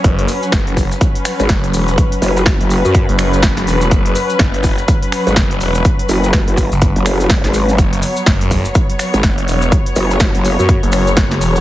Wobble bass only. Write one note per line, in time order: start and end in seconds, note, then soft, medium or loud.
1.40 1.48 G#1 medium
2.22 2.58 F#1 loud
2.61 2.83 F#1 loud
2.85 3.07 F#2 loud
5.27 5.35 G#1 loud
6.09 6.45 F#1 loud
6.48 6.70 F#1 loud
6.96 7.42 F#1 loud
7.44 7.77 G#1 loud
9.14 9.22 G#1 loud
9.96 10.32 F#1 loud
10.35 10.57 F#1 loud
10.59 10.81 F#2 loud